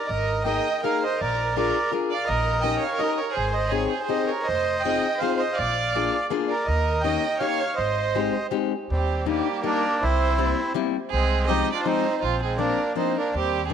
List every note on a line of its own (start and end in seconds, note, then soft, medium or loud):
0.07 0.58 G#1 medium
0.07 0.43 A#4 medium
0.07 0.44 A#4 medium
0.07 0.45 D#5 medium
0.44 0.66 A#3 soft
0.44 0.66 D#4 soft
0.44 0.66 G#4 medium
0.44 0.67 A#4 medium
0.44 0.80 D#5 medium
0.44 0.81 D#5 medium
0.44 0.84 G5 medium
0.84 1.03 A#3 medium
0.84 1.04 D#4 soft
0.84 1.04 G#4 medium
0.84 1.02 A#4 medium
0.84 1.04 A#4 medium
0.84 1.03 A#4 medium
0.84 1.04 F5 medium
1.03 1.18 C5 medium
1.03 1.20 C5 medium
1.03 1.21 D#5 medium
1.19 1.68 A#1 medium
1.19 1.53 A#4 medium
1.19 1.55 A#4 medium
1.19 1.56 D5 medium
1.56 1.76 D4 medium
1.56 1.76 F4 medium
1.56 1.76 G#4 medium
1.56 1.89 A#4 medium
1.56 1.77 A#4 medium
1.56 1.91 A#4 medium
1.56 1.90 D5 medium
1.92 2.12 D4 medium
1.92 2.11 F4 medium
1.92 2.12 G#4 medium
1.92 2.12 A#4 medium
2.11 2.26 D5 medium
2.11 2.29 F5 medium
2.15 2.29 D5 medium
2.26 2.75 A#1 medium
2.26 2.61 A#4 medium
2.26 2.62 A#4 medium
2.26 2.64 D#5 medium
2.61 2.83 C#4 medium
2.61 2.83 D#4 medium
2.61 2.84 G4 medium
2.61 2.84 A#4 medium
2.61 2.79 D#5 medium
2.61 2.83 G5 medium
2.65 2.83 D#5 medium
2.79 2.95 C#5 medium
2.79 3.00 F5 medium
2.86 3.00 C#5 medium
2.95 3.19 C#4 medium
2.95 3.19 D#4 medium
2.95 3.15 A#4 medium
2.95 3.20 D#5 medium
2.99 3.19 G4 medium
2.99 3.19 A#4 medium
2.99 3.18 A#4 medium
3.16 3.32 A#4 medium
3.16 3.36 C#5 medium
3.20 3.35 A#4 medium
3.32 3.50 G#4 medium
3.32 3.55 G#4 medium
3.32 3.55 C5 medium
3.37 3.85 G#1 medium
3.51 3.67 C5 medium
3.51 3.72 D#5 medium
3.57 3.72 C5 medium
3.67 3.87 G#4 medium
3.67 3.91 C#5 medium
3.71 3.92 C4 medium
3.71 3.92 D#4 medium
3.71 3.92 G4 soft
3.71 3.93 G#4 medium
3.71 3.91 G#4 medium
3.88 4.03 G#4 medium
3.88 4.09 C5 medium
3.93 4.09 G#4 medium
4.04 4.26 C5 medium
4.09 4.30 C4 medium
4.09 4.30 D#4 medium
4.09 4.30 G4 soft
4.09 4.30 G#4 medium
4.09 4.31 D#5 medium
4.13 4.31 C5 medium
4.27 4.43 A#4 medium
4.27 4.47 C#5 medium
4.32 4.47 A#4 medium
4.44 4.79 C5 medium
4.44 4.82 C5 medium
4.44 4.82 D#5 medium
4.49 4.97 F1 medium
4.80 5.17 D#5 medium
4.80 5.19 D#5 medium
4.80 5.21 G5 medium
4.85 5.05 C4 medium
4.85 5.05 D#4 medium
4.85 5.06 F4 medium
4.85 5.06 G#4 medium
5.18 5.42 C4 medium
5.18 5.37 C5 medium
5.18 5.41 F5 medium
5.22 5.42 D#4 medium
5.22 5.43 F4 medium
5.22 5.42 G#4 medium
5.22 5.41 C5 medium
5.38 5.55 C5 medium
5.38 5.58 D#5 medium
5.43 5.58 C5 medium
5.53 6.26 D5 medium
5.53 6.27 D5 medium
5.53 6.25 F5 medium
5.59 6.06 A#1 medium
5.95 6.15 A#3 medium
5.95 6.15 D4 medium
5.95 6.16 F4 medium
5.95 6.16 G#4 medium
6.30 6.51 A#3 medium
6.30 6.52 D4 medium
6.30 6.52 F4 medium
6.30 6.51 G#4 medium
6.48 6.64 A#4 medium
6.48 6.66 A#4 medium
6.48 6.67 D5 medium
6.64 7.00 A#4 medium
6.64 7.02 A#4 medium
6.64 7.02 D#5 medium
6.68 7.16 D#2 loud
7.01 7.24 A#3 medium
7.01 7.24 C#4 medium
7.01 7.24 D#4 medium
7.01 7.24 G4 medium
7.01 7.38 D#5 medium
7.01 7.40 G5 medium
7.38 7.61 A#3 medium
7.38 7.61 C#4 medium
7.38 7.61 D#4 medium
7.38 7.61 G4 medium
7.38 7.74 C#5 medium
7.38 7.75 C#5 medium
7.38 7.78 F5 medium
7.75 8.26 G#1 medium
7.75 8.47 C5 medium
7.75 8.46 D#5 medium
8.15 8.35 G#3 medium
8.15 8.35 C4 medium
8.15 8.35 D#4 soft
8.15 8.35 G4 medium
8.51 8.72 G#3 medium
8.51 8.72 C4 medium
8.51 8.72 D#4 medium
8.51 8.72 G4 medium
8.89 9.39 D#2 medium
8.89 9.25 G3 medium
8.89 9.26 C4 medium
8.94 9.27 G4 medium
9.26 9.47 G3 medium
9.26 9.62 G3 medium
9.26 9.47 A#3 medium
9.26 9.64 A#3 medium
9.26 9.47 D4 medium
9.26 9.47 D#4 medium
9.26 9.63 G4 medium
9.63 9.85 G3 medium
9.63 9.85 A#3 medium
9.63 10.00 A#3 medium
9.63 9.84 D4 medium
9.63 10.04 D4 loud
9.63 9.85 D#4 medium
9.63 9.99 A#4 medium
10.01 10.51 C2 loud
10.01 10.73 C4 medium
10.01 10.73 E4 loud
10.01 10.72 C5 medium
10.38 10.59 G3 medium
10.38 10.59 A#3 medium
10.38 10.59 C4 medium
10.38 10.59 E4 medium
10.74 10.96 G3 medium
10.74 10.95 A#3 medium
10.74 10.96 C4 medium
10.74 10.96 E4 medium
11.10 11.60 C2 medium
11.10 11.47 G#3 medium
11.10 11.50 C4 medium
11.10 11.45 G#4 loud
11.47 11.69 F3 medium
11.47 11.69 G#3 medium
11.47 11.69 C4 medium
11.47 11.72 D#4 medium
11.47 11.69 D#4 medium
11.47 11.73 G4 loud
11.47 11.71 D#5 medium
11.73 11.85 D4 medium
11.73 11.86 F4 medium
11.73 11.84 D5 medium
11.84 12.06 F3 medium
11.84 12.06 G#3 medium
11.84 12.06 C4 medium
11.84 12.20 C4 medium
11.84 12.23 D#4 loud
11.84 12.06 D#4 medium
11.84 12.19 C5 medium
12.22 12.70 A#1 medium
12.22 12.41 F3 medium
12.22 12.42 C4 medium
12.22 12.41 F4 medium
12.43 12.58 G#3 medium
12.43 12.60 C4 medium
12.43 12.58 G#4 medium
12.58 12.78 F3 medium
12.58 12.79 A#3 medium
12.58 12.93 A#3 medium
12.58 12.79 C4 medium
12.58 12.93 D4 medium
12.58 12.79 D4 medium
12.58 12.93 A#4 medium
12.95 13.16 F3 medium
12.95 13.16 A#3 medium
12.95 13.16 C4 medium
12.95 13.15 C4 medium
12.95 13.17 D4 medium
12.95 13.17 D#4 medium
12.95 13.16 C5 medium
13.18 13.33 A#3 medium
13.18 13.35 D4 medium
13.18 13.34 A#4 medium
13.34 13.73 D#2 medium
13.34 13.64 G3 medium
13.34 13.64 C4 medium
13.34 13.64 G4 medium
13.66 13.71 C4 medium
13.66 13.71 G#4 soft
13.70 13.73 D#3 medium
13.70 13.73 G3 medium
13.70 13.73 A#3 medium
13.70 13.73 D4 medium